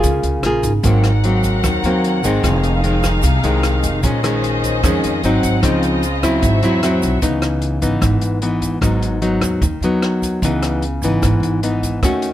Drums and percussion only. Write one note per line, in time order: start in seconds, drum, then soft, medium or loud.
0.04 kick medium
0.04 closed hi-hat medium
0.04 shaker medium
0.23 closed hi-hat soft
0.23 shaker soft
0.43 cross-stick medium
0.43 closed hi-hat soft
0.63 kick soft
0.63 closed hi-hat soft
0.63 shaker medium
0.84 kick medium
0.84 closed hi-hat medium
0.84 shaker medium
1.04 cross-stick medium
1.04 closed hi-hat soft
1.04 shaker soft
1.24 closed hi-hat soft
1.44 kick soft
1.44 closed hi-hat soft
1.44 shaker medium
1.64 kick medium
1.64 cross-stick medium
1.64 closed hi-hat medium
1.64 shaker medium
1.83 closed hi-hat soft
1.83 shaker soft
2.04 closed hi-hat soft
2.24 kick soft
2.24 closed hi-hat soft
2.24 shaker medium
2.44 kick medium
2.44 cross-stick medium
2.44 closed hi-hat medium
2.44 shaker medium
2.64 closed hi-hat soft
2.64 shaker soft
2.84 closed hi-hat soft
3.04 kick soft
3.04 cross-stick medium
3.04 closed hi-hat soft
3.04 shaker medium
3.23 kick medium
3.23 closed hi-hat medium
3.23 shaker medium
3.44 closed hi-hat soft
3.44 shaker soft
3.63 cross-stick medium
3.63 closed hi-hat soft
3.63 shaker soft
3.83 kick soft
3.83 closed hi-hat soft
3.83 shaker medium
4.03 kick medium
4.03 closed hi-hat medium
4.03 shaker medium
4.24 cross-stick medium
4.24 closed hi-hat soft
4.24 shaker soft
4.44 closed hi-hat soft
4.63 kick soft
4.63 closed hi-hat soft
4.63 shaker medium
4.84 kick medium
4.84 cross-stick medium
4.84 closed hi-hat soft
4.84 shaker medium
5.04 closed hi-hat soft
5.04 shaker soft
5.24 closed hi-hat soft
5.24 shaker soft
5.43 kick soft
5.43 closed hi-hat soft
5.43 shaker medium
5.63 kick medium
5.63 cross-stick medium
5.63 closed hi-hat medium
5.63 shaker medium
5.83 closed hi-hat soft
5.83 shaker soft
6.03 closed hi-hat soft
6.03 shaker medium
6.23 kick soft
6.23 cross-stick medium
6.23 closed hi-hat soft
6.23 shaker medium
6.43 kick soft
6.43 closed hi-hat medium
6.43 shaker medium
6.63 closed hi-hat soft
6.63 shaker soft
6.83 cross-stick medium
6.83 closed hi-hat soft
6.83 shaker soft
7.03 kick soft
7.03 closed hi-hat soft
7.03 shaker medium
7.22 kick medium
7.22 closed hi-hat medium
7.22 shaker medium
7.42 cross-stick medium
7.42 closed hi-hat soft
7.42 shaker soft
7.62 closed hi-hat soft
7.82 kick soft
7.82 closed hi-hat soft
7.82 shaker medium
8.02 kick medium
8.02 cross-stick medium
8.02 closed hi-hat medium
8.02 shaker medium
8.21 closed hi-hat soft
8.21 shaker soft
8.42 closed hi-hat soft
8.62 kick soft
8.62 closed hi-hat soft
8.62 shaker medium
8.82 kick medium
8.82 cross-stick medium
8.82 closed hi-hat soft
8.82 shaker medium
9.03 closed hi-hat soft
9.03 shaker soft
9.22 closed hi-hat soft
9.41 kick soft
9.41 cross-stick medium
9.41 closed hi-hat soft
9.41 shaker medium
9.62 kick soft
9.62 closed hi-hat soft
9.62 shaker medium
9.83 closed hi-hat soft
9.83 shaker soft
10.02 cross-stick medium
10.02 closed hi-hat soft
10.22 kick soft
10.22 closed hi-hat soft
10.22 shaker medium
10.42 kick medium
10.42 closed hi-hat medium
10.42 shaker medium
10.63 cross-stick medium
10.63 closed hi-hat soft
10.63 shaker soft
10.82 closed hi-hat soft
11.03 kick soft
11.03 closed hi-hat soft
11.03 shaker medium
11.23 kick medium
11.23 cross-stick soft
11.23 closed hi-hat medium
11.23 shaker medium
11.43 closed hi-hat soft
11.43 shaker soft
11.63 closed hi-hat soft
11.83 kick soft
11.83 closed hi-hat soft
11.83 shaker medium
12.03 kick medium
12.03 cross-stick medium
12.03 closed hi-hat soft
12.03 shaker medium
12.22 closed hi-hat soft
12.22 shaker soft